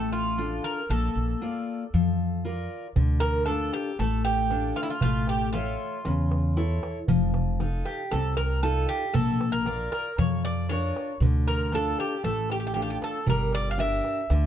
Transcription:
0.00 0.58 A1 medium
0.00 0.36 A3 medium
0.00 0.12 A4 medium
0.13 0.64 F4 medium
0.38 0.79 D4 soft
0.38 0.79 F4 soft
0.38 0.80 A4 medium
0.64 0.88 A#4 medium
0.89 1.08 A#1 medium
0.89 1.40 A#3 medium
0.89 2.41 A4 medium
1.15 1.33 A#1 medium
1.42 1.83 A#3 soft
1.42 1.83 F4 soft
1.42 1.83 D5 soft
1.94 2.66 F2 medium
1.94 2.44 F3 medium
2.45 2.86 F4 soft
2.45 2.86 A#4 soft
2.45 2.87 D5 medium
2.96 3.68 D2 medium
2.96 3.46 D3 medium
2.96 darbuka dum medium
3.20 3.45 A#4 loud
3.20 darbuka tek medium
3.46 3.89 D4 soft
3.46 3.89 F4 soft
3.46 3.73 A4 medium
3.46 3.89 A4 medium
3.46 darbuka tek medium
3.73 3.99 G4 medium
3.73 darbuka tek medium
3.99 4.71 A1 medium
3.99 4.49 A3 medium
3.99 4.24 A4 medium
3.99 darbuka tek medium
4.24 4.76 G4 medium
4.24 darbuka tek medium
4.51 4.92 D4 medium
4.51 4.92 F4 soft
4.51 4.92 A4 soft
4.51 darbuka tek medium
4.76 4.82 F4 medium
4.76 darbuka tek medium
4.83 4.89 E4 medium
4.89 5.01 F4 medium
4.89 darbuka tek soft
5.01 5.75 A1 medium
5.01 5.53 A3 medium
5.01 5.26 F4 medium
5.01 darbuka dum medium
5.27 5.52 G4 medium
5.27 darbuka tek medium
5.53 6.78 F4 medium
5.53 5.96 A4 soft
5.53 5.96 C#5 medium
5.53 5.96 E5 medium
5.53 darbuka tek medium
6.05 6.78 E2 loud
6.05 6.56 C#3 medium
6.05 darbuka tek medium
6.31 darbuka tek medium
6.44 darbuka tek soft
6.57 6.98 E4 soft
6.57 6.98 A4 soft
6.57 6.99 C#5 medium
6.57 darbuka tek medium
6.83 darbuka tek medium
6.96 darbuka tek soft
7.08 7.81 F1 medium
7.08 7.59 F3 medium
7.08 darbuka dum loud
7.34 darbuka tek medium
7.60 8.02 D#4 medium
7.60 8.02 F4 soft
7.60 8.02 A4 medium
7.60 darbuka tek medium
7.85 8.12 G4 medium
7.85 darbuka tek medium
8.11 8.84 C2 medium
8.11 8.62 C3 medium
8.11 8.36 A4 medium
8.11 darbuka tek medium
8.37 8.62 A#4 medium
8.37 darbuka tek medium
8.51 darbuka tek soft
8.63 9.04 D#4 soft
8.63 9.05 F4 soft
8.63 8.87 A4 medium
8.63 9.05 A4 soft
8.63 darbuka tek medium
8.89 9.13 G4 medium
9.02 darbuka tek soft
9.13 9.87 A#1 medium
9.13 9.65 A#3 medium
9.13 9.50 A4 medium
9.13 darbuka dum loud
9.41 darbuka tek medium
9.52 9.91 A#4 medium
9.52 darbuka tek soft
9.66 10.08 F4 soft
9.66 10.08 A#4 soft
9.66 10.08 D5 medium
9.66 darbuka tek medium
9.79 darbuka tek soft
9.92 10.18 A#4 medium
9.92 darbuka tek medium
10.18 10.90 F2 medium
10.18 10.68 F3 medium
10.18 10.42 C#5 medium
10.18 darbuka tek medium
10.18 darbuka dum medium
10.32 darbuka tek soft
10.45 10.68 D5 medium
10.45 darbuka tek medium
10.69 11.12 D4 medium
10.69 11.11 F4 soft
10.69 11.12 A#4 soft
10.69 11.17 C#5 medium
10.69 darbuka tek medium
10.96 darbuka tek medium
11.20 11.93 D2 medium
11.20 11.72 D3 medium
11.20 darbuka dum medium
11.47 11.74 A#4 medium
11.47 darbuka tek medium
11.72 12.14 D4 medium
11.72 12.14 F4 soft
11.72 12.14 A4 medium
11.72 11.99 A4 medium
11.72 darbuka tek medium
11.99 12.24 G4 medium
11.99 darbuka tek medium
12.24 12.96 A1 medium
12.24 12.74 A3 medium
12.24 12.51 A4 medium
12.24 darbuka tek medium
12.50 12.58 G4 medium
12.50 darbuka tek medium
12.60 12.66 G4 medium
12.60 darbuka tek soft
12.67 12.73 G4 medium
12.74 13.17 D4 soft
12.74 13.17 F4 soft
12.74 12.81 G4 medium
12.74 13.17 A4 soft
12.74 darbuka tek medium
12.82 12.89 G4 medium
12.90 12.96 G4 medium
13.02 13.27 A4 medium
13.02 darbuka tek medium
13.14 darbuka tek soft
13.26 13.99 G1 medium
13.26 13.77 G3 medium
13.26 13.52 A#4 medium
13.26 darbuka dum medium
13.52 13.70 D5 loud
13.52 darbuka tek medium
13.71 13.78 F5 medium
13.78 14.20 D4 medium
13.78 14.20 G4 soft
13.78 14.20 A#4 medium
13.78 14.46 E5 medium
13.78 darbuka tek medium
14.04 darbuka tek medium
14.30 14.46 D2 medium
14.30 14.46 D3 medium
14.30 darbuka tek medium

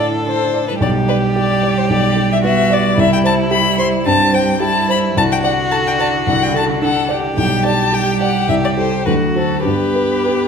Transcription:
0.00 0.77 A2 soft
0.00 0.79 D3 soft
0.00 0.78 A4 medium
0.00 0.42 D5 soft
0.26 0.70 A4 soft
0.26 0.66 C5 medium
0.54 0.81 D5 soft
0.68 0.73 B4 medium
0.80 1.86 B1 soft
0.80 5.18 G3 medium
0.80 2.40 G4 medium
0.80 0.90 D5 medium
1.09 1.17 B4 medium
1.09 1.52 D5 soft
1.36 1.79 G4 soft
1.36 1.79 D5 medium
1.63 2.06 D5 soft
1.78 1.90 C5 medium
1.89 2.94 B1 soft
1.89 2.30 D5 medium
2.16 2.60 G4 soft
2.32 2.37 E5 medium
2.43 2.86 B3 soft
2.43 2.96 F#4 medium
2.43 2.75 E5 medium
2.70 2.97 D5 soft
2.70 3.01 D5 medium
2.97 4.02 C2 medium
2.97 4.07 E4 medium
2.97 3.12 E5 medium
3.13 3.18 G5 medium
3.24 3.67 C5 soft
3.24 3.33 A5 medium
3.51 3.94 G4 soft
3.51 3.78 B5 medium
3.78 4.22 C5 soft
3.78 3.87 C6 medium
4.06 4.50 G2 soft
4.06 4.61 C4 medium
4.06 4.36 A5 medium
4.33 4.77 C5 soft
4.33 4.61 G5 medium
4.60 5.18 E4 medium
4.60 5.05 G4 soft
4.60 4.89 A5 medium
4.89 5.16 C5 soft
4.89 4.98 B5 medium
5.17 6.23 C2 medium
5.17 7.37 D3 medium
5.17 6.84 F#4 medium
5.17 5.23 A5 medium
5.32 5.37 G5 medium
5.44 5.88 D5 soft
5.44 5.52 F#5 medium
5.71 6.15 A4 soft
5.71 5.77 A5 medium
5.87 5.92 G5 medium
5.99 6.43 D5 soft
5.99 6.08 A5 medium
6.27 7.34 C2 soft
6.27 6.45 F#5 medium
6.43 6.55 G5 medium
6.54 6.98 A4 soft
6.54 6.64 A5 medium
6.81 7.26 D4 soft
6.81 7.12 A4 medium
6.81 7.10 F#5 medium
7.09 9.07 G4 medium
7.09 7.37 D5 soft
7.37 8.46 B1 medium
7.37 7.89 G3 soft
7.37 7.63 G5 medium
7.65 8.09 D5 soft
7.65 7.95 A5 medium
7.93 8.48 G3 soft
7.93 8.38 G4 soft
7.93 8.21 G5 medium
8.21 8.49 D5 soft
8.21 8.48 F#5 medium
8.48 9.04 C2 soft
8.48 9.06 G3 soft
8.48 8.55 E5 medium
8.65 8.70 D5 medium
8.76 9.03 G4 soft
8.76 9.04 A4 soft
8.76 9.05 C5 medium
9.05 9.64 D2 soft
9.05 9.67 F#3 soft
9.05 9.65 F#4 soft
9.05 9.13 B4 medium
9.35 9.62 F#4 soft
9.35 9.65 A4 soft
9.35 9.62 C5 soft
9.65 10.48 G2 soft
9.65 10.48 B3 soft
9.65 10.48 G4 medium
9.65 10.48 B4 medium
9.95 10.44 B4 soft
10.26 10.48 G4 soft

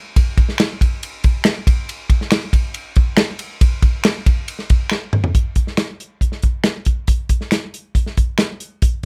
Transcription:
0.16 kick loud
0.16 ride medium
0.37 kick medium
0.37 ride medium
0.49 snare soft
0.58 finger snap medium
0.58 snare loud
0.58 ride medium
0.81 kick medium
0.81 ride medium
1.03 ride medium
1.24 kick medium
1.24 ride medium
1.44 finger snap loud
1.44 snare loud
1.44 ride medium
1.67 kick loud
1.67 ride medium
1.89 ride medium
2.10 kick medium
2.10 ride medium
2.21 snare soft
2.31 finger snap medium
2.31 snare loud
2.31 ride medium
2.53 kick medium
2.53 ride medium
2.74 ride medium
2.96 kick loud
2.96 ride medium
3.17 finger snap medium
3.17 snare loud
3.17 ride medium
3.39 ride medium
3.61 kick loud
3.61 ride medium
3.82 kick medium
3.82 ride medium
4.04 finger snap medium
4.04 snare loud
4.04 ride medium
4.26 kick loud
4.26 ride medium
4.48 ride medium
4.59 snare soft
4.70 kick medium
4.70 ride medium
4.90 finger snap medium
4.90 snare medium
5.13 mid tom medium
5.24 floor tom medium
5.35 kick loud
5.35 closed hi-hat medium
5.56 kick medium
5.56 closed hi-hat medium
5.67 snare soft
5.77 finger snap medium
5.77 snare loud
5.77 closed hi-hat loud
6.00 closed hi-hat medium
6.21 kick medium
6.21 closed hi-hat medium
6.32 snare soft
6.42 kick medium
6.42 closed hi-hat medium
6.64 finger snap medium
6.64 snare loud
6.64 closed hi-hat medium
6.85 kick medium
6.85 closed hi-hat medium
7.07 kick loud
7.07 closed hi-hat medium
7.29 kick medium
7.29 closed hi-hat medium
7.41 snare soft
7.51 finger snap medium
7.51 snare loud
7.51 closed hi-hat loud
7.74 closed hi-hat medium
7.95 kick medium
7.95 closed hi-hat medium
8.06 snare soft
8.17 kick medium
8.17 closed hi-hat medium
8.38 finger snap medium
8.38 snare loud
8.38 closed hi-hat medium
8.60 closed hi-hat medium
8.82 kick loud
8.82 closed hi-hat medium

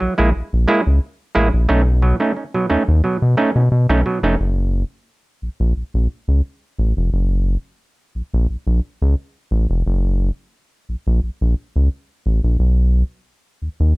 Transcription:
0.00 0.08 A#1 soft
0.00 0.14 F#3 medium
0.18 0.32 A#1 loud
0.18 0.30 G#3 medium
0.18 0.30 A#3 medium
0.18 0.30 E4 medium
0.36 0.43 A#1 medium
0.53 0.66 A#1 medium
0.68 0.81 G#3 loud
0.68 0.81 A#3 medium
0.68 0.81 E4 loud
0.87 1.00 C#2 medium
1.35 1.51 A1 medium
1.35 1.48 G#3 medium
1.35 1.48 A#3 medium
1.35 1.48 E4 loud
1.54 1.67 A#1 medium
1.69 2.13 B1 loud
1.69 1.82 A3 medium
1.69 1.82 C#4 medium
1.69 1.82 D#4 medium
2.02 2.16 B2 medium
2.02 2.16 F#3 medium
2.20 2.32 A3 medium
2.20 2.32 C#4 medium
2.20 2.32 D#4 medium
2.36 2.44 C#4 soft
2.36 2.44 D#4 soft
2.54 2.66 B2 medium
2.54 2.66 F#3 medium
2.70 2.77 D#2 soft
2.70 2.83 A3 medium
2.70 2.83 C#4 medium
2.70 2.83 D#4 medium
2.88 3.02 D#2 medium
3.04 3.17 B2 medium
3.04 3.17 F#3 medium
3.22 3.36 B2 medium
3.37 3.51 A3 medium
3.37 3.51 C#4 medium
3.37 3.51 D#4 medium
3.56 3.69 B2 loud
3.56 3.63 C#4 soft
3.56 3.62 D#4 soft
3.72 3.87 B2 loud
3.89 4.03 B1 medium
3.89 4.01 A3 medium
3.89 4.01 C#4 medium
3.89 4.01 D#4 medium
4.06 4.19 B2 medium
4.06 4.19 F#3 medium
4.23 4.37 F1 medium
4.23 4.35 A3 medium
4.23 4.35 C#4 medium
4.23 4.35 D#4 medium
4.40 4.84 F#1 loud
5.42 5.49 A#1 soft
5.60 5.73 A#1 medium
5.76 5.83 A#1 soft
5.94 6.08 A#1 medium
6.28 6.42 C#2 medium
6.79 6.94 A1 medium
6.97 7.10 F1 medium
7.13 7.57 F#1 loud
8.15 8.22 A#1 soft
8.34 8.47 A#1 medium
8.50 8.57 A#1 soft
8.67 8.80 A#1 medium
9.02 9.15 C#2 medium
9.51 9.67 A1 medium
9.70 9.83 F1 medium
9.86 10.30 F#1 loud
10.89 10.96 A#1 soft
11.07 11.20 A#1 medium
11.23 11.30 A#1 soft
11.41 11.55 A#1 medium
11.76 11.89 C#2 medium
12.26 12.41 A1 medium
12.44 12.57 A#1 medium
12.59 13.03 B1 loud
13.62 13.69 D#2 soft
13.80 13.93 D#2 medium

